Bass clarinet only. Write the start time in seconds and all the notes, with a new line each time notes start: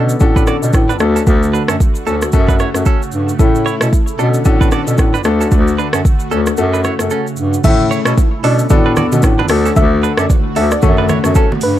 Already playing: B2
0.21 A2
0.63 B2
0.73 A2
1.00 D2
1.27 D2
1.69 F#2
2.07 D2
2.33 F#2
2.75 F#2
3.13 G2
3.39 A2
3.81 B2
4.19 B2
4.46 A2
4.88 B2
4.98 A2
5.25 D2
5.52 D2
5.94 F#2
6.31 D2
6.58 F#2
7.00 F#2
7.38 G2
7.64 A2
8.06 B2
8.44 B2
8.70 A2
9.12 B2
9.23 A2
9.50 D2
9.77 D2
10.18 F#2
10.56 D2
10.83 F#2
11.25 F#2
11.62 G2